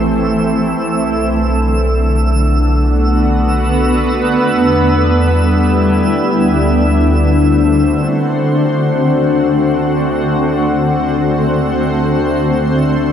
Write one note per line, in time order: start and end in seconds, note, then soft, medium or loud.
0.00 0.73 A1 medium
0.00 0.78 E3 medium
0.00 4.42 A3 medium
0.00 8.22 A3 medium
0.00 0.80 C4 medium
0.00 0.78 G4 medium
0.00 8.22 A4 medium
0.00 0.80 C5 medium
0.00 8.11 E6 medium
0.78 4.37 B1 medium
0.78 13.12 D3 medium
2.09 6.25 B3 medium
2.24 5.14 F#4 medium
2.42 6.26 B4 medium
4.42 6.21 E2 medium
4.58 6.26 G3 medium
4.71 7.00 E4 medium
6.26 8.08 D2 medium
6.37 13.12 A3 medium
7.07 13.12 C4 medium
7.07 13.12 F#4 medium
7.07 13.12 C5 medium
8.12 13.12 D2 medium
8.12 13.12 E6 medium